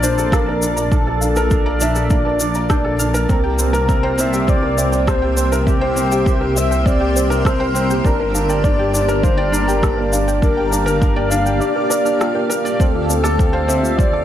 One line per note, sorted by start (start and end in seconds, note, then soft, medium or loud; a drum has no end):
0.00 3.26 A#1 medium
0.00 12.80 A#3 medium
0.00 0.03 D4 medium
0.00 0.11 D4 loud
0.00 3.30 F4 medium
0.00 0.18 A4 medium
0.00 0.48 A#4 loud
0.00 0.35 C5 medium
0.00 0.78 D5 loud
0.00 4.67 D5 medium
0.00 0.10 D5 medium
0.00 5.20 A5 medium
0.00 shaker medium
0.18 0.32 A4 medium
0.18 shaker soft
0.32 0.47 D4 medium
0.32 0.77 A#4 loud
0.32 0.37 F5 medium
0.32 kick loud
0.32 cross-stick medium
0.32 shaker soft
0.46 0.62 A#4 medium
0.46 0.51 A5 medium
0.62 0.76 D4 medium
0.62 shaker medium
0.76 0.91 D5 medium
0.76 0.81 A#5 medium
0.76 shaker soft
0.91 1.00 D4 medium
0.91 1.83 A4 loud
0.91 0.99 D5 medium
0.91 kick loud
0.91 shaker soft
1.07 1.15 A4 medium
1.21 1.36 D4 medium
1.21 1.26 F5 medium
1.21 shaker medium
1.36 1.51 A#4 loud
1.36 1.41 A5 medium
1.36 shaker soft
1.51 1.65 D4 medium
1.51 kick loud
1.51 shaker soft
1.66 1.74 D5 medium
1.66 1.70 A#5 medium
1.80 1.90 D4 loud
1.80 1.88 D5 medium
1.80 2.12 E5 medium
1.80 shaker medium
1.95 2.10 A4 medium
1.95 shaker soft
2.10 2.25 D4 medium
2.10 3.00 D5 loud
2.10 2.15 F5 medium
2.10 kick loud
2.10 shaker soft
2.25 2.40 A#4 medium
2.25 2.30 A5 medium
2.40 2.54 D4 medium
2.40 shaker medium
2.55 2.70 D5 medium
2.55 2.63 A#5 medium
2.55 shaker soft
2.70 2.79 D4 medium
2.70 2.82 G6 medium
2.70 kick loud
2.70 cross-stick medium
2.70 shaker soft
2.85 2.93 A4 medium
2.99 3.14 D4 medium
2.99 3.07 F6 loud
2.99 shaker medium
3.14 3.28 A#4 loud
3.14 3.22 A#5 medium
3.14 shaker soft
3.29 3.38 C4 medium
3.29 4.22 A#4 loud
3.29 kick loud
3.29 shaker soft
3.44 3.53 G4 medium
3.44 14.25 G4 medium
3.44 3.52 G5 loud
3.58 3.73 C4 medium
3.58 3.67 C5 medium
3.58 8.05 E5 medium
3.58 shaker medium
3.73 3.88 A#4 loud
3.73 shaker soft
3.88 4.03 C4 medium
3.88 3.93 E5 medium
3.88 kick loud
3.88 shaker soft
4.03 4.12 C5 loud
4.03 4.08 G5 medium
4.08 9.00 C5 medium
4.18 4.27 C4 loud
4.18 4.51 E5 loud
4.18 shaker medium
4.33 4.47 G4 medium
4.33 4.41 G5 loud
4.33 shaker soft
4.47 4.62 C4 medium
4.47 4.56 C5 medium
4.47 5.11 D5 loud
4.47 kick loud
4.47 shaker soft
4.63 4.77 A#4 medium
4.77 4.92 C4 medium
4.77 4.82 E5 medium
4.77 shaker medium
4.92 5.07 C5 medium
4.92 4.97 G5 medium
4.92 shaker soft
5.07 5.16 C4 medium
5.07 5.53 C5 loud
5.07 kick loud
5.07 cross-stick medium
5.07 shaker soft
5.22 5.31 G4 medium
5.22 5.30 G5 loud
5.37 5.52 C4 medium
5.37 5.45 C5 medium
5.37 shaker medium
5.52 5.66 A#4 loud
5.52 shaker soft
5.66 5.81 C4 medium
5.66 6.59 G4 loud
5.66 5.71 E5 medium
5.66 kick loud
5.66 shaker soft
5.81 5.90 C5 loud
5.81 5.86 G5 medium
5.96 6.05 C4 loud
5.96 shaker medium
6.11 6.26 G4 medium
6.11 6.19 G5 medium
6.11 shaker soft
6.25 6.40 C4 medium
6.25 6.34 C5 medium
6.25 kick loud
6.25 shaker soft
6.41 6.55 A#4 medium
6.56 6.70 C4 medium
6.56 6.61 E5 medium
6.56 6.88 E5 loud
6.56 shaker medium
6.71 6.85 C5 medium
6.71 6.76 G5 medium
6.71 shaker soft
6.86 6.94 C4 medium
6.86 7.46 D5 loud
6.86 kick loud
6.86 shaker soft
7.00 7.09 G4 medium
7.00 7.08 G5 loud
7.15 7.30 C4 medium
7.15 7.24 C5 medium
7.15 shaker medium
7.30 7.44 A#4 loud
7.30 shaker soft
7.45 7.59 C4 medium
7.45 7.90 C5 loud
7.45 7.50 E5 medium
7.45 kick loud
7.45 cross-stick medium
7.45 shaker soft
7.60 7.68 C5 loud
7.60 7.65 G5 medium
7.75 7.83 C4 loud
7.75 shaker medium
7.90 8.04 G4 medium
7.90 7.98 G5 medium
7.90 shaker soft
8.04 11.61 G1 medium
8.04 8.19 D4 medium
8.04 8.65 A#4 loud
8.04 8.13 D5 medium
8.04 kick loud
8.04 shaker soft
8.20 8.34 A#4 medium
8.34 8.48 D4 medium
8.34 8.39 F5 medium
8.34 shaker medium
8.49 8.63 D5 medium
8.49 8.54 G5 medium
8.49 shaker soft
8.64 8.73 D4 medium
8.64 9.25 D5 loud
8.64 14.25 F5 medium
8.64 kick loud
8.64 shaker soft
8.79 8.87 G4 medium
8.79 8.87 G5 loud
8.94 9.08 D4 medium
8.94 9.02 D5 medium
8.94 shaker medium
9.04 14.25 D5 medium
9.09 9.23 A#4 loud
9.09 shaker soft
9.23 9.38 D4 medium
9.23 9.55 C5 loud
9.23 9.28 F5 medium
9.23 kick loud
9.23 shaker soft
9.37 9.46 D5 loud
9.37 9.43 G5 medium
9.52 9.61 D4 loud
9.52 10.13 A#4 medium
9.52 shaker medium
9.67 9.82 G4 medium
9.67 9.76 G5 loud
9.67 shaker soft
9.82 9.97 D4 medium
9.82 9.91 D5 medium
9.82 kick loud
9.82 cross-stick medium
9.82 shaker soft
9.98 10.12 A#4 medium
10.12 10.27 D4 medium
10.12 10.17 F5 medium
10.12 shaker medium
10.28 10.42 D5 medium
10.28 10.32 G5 medium
10.28 shaker soft
10.42 10.51 D4 medium
10.42 11.32 A#4 loud
10.42 kick loud
10.42 shaker soft
10.57 10.66 G4 medium
10.57 10.65 G5 loud
10.71 10.86 D4 medium
10.71 10.80 D5 medium
10.71 shaker medium
10.86 11.00 A#4 loud
10.86 shaker soft
11.01 11.15 D4 medium
11.01 11.06 F5 medium
11.01 kick loud
11.01 shaker soft
11.16 11.25 D5 loud
11.16 11.21 G5 medium
11.30 11.40 D4 loud
11.30 11.62 F5 loud
11.30 shaker medium
11.46 11.60 G4 medium
11.46 11.54 G5 loud
11.46 shaker soft
11.60 11.75 D4 medium
11.60 12.50 D5 loud
11.60 11.69 D5 medium
11.60 shaker soft
11.76 11.89 A#4 medium
11.90 12.05 A#4 loud
11.90 11.95 D5 loud
11.90 shaker medium
12.05 12.19 D4 medium
12.05 12.10 F6 medium
12.05 shaker soft
12.19 12.34 F4 medium
12.19 12.28 G5 medium
12.19 cross-stick medium
12.19 shaker soft
12.34 12.48 A#4 medium
12.34 12.43 G5 medium
12.50 12.64 A#4 loud
12.50 12.55 F6 medium
12.50 shaker medium
12.65 12.79 D5 loud
12.65 shaker soft
12.79 14.25 D2 medium
12.79 12.88 C4 medium
12.79 14.25 C4 medium
12.79 13.70 A4 loud
12.79 12.88 C5 medium
12.79 kick loud
12.79 shaker soft
12.95 13.03 F4 medium
13.09 13.23 C4 medium
13.09 13.14 D5 medium
13.09 shaker medium
13.24 13.38 A4 loud
13.24 13.29 D6 medium
13.24 shaker soft
13.30 14.25 A5 medium
13.39 13.53 C4 medium
13.39 kick loud
13.39 shaker soft
13.53 13.62 C5 loud
13.53 13.62 F5 loud
13.68 13.77 C4 loud
13.68 13.77 C5 medium
13.68 13.98 E5 medium
13.68 shaker medium
13.83 13.97 F4 medium
13.83 shaker soft
13.97 14.13 C4 medium
13.97 14.25 D5 loud
13.97 14.03 D5 medium
13.97 kick loud
13.97 shaker soft
14.13 14.25 A4 medium
14.13 14.18 D6 medium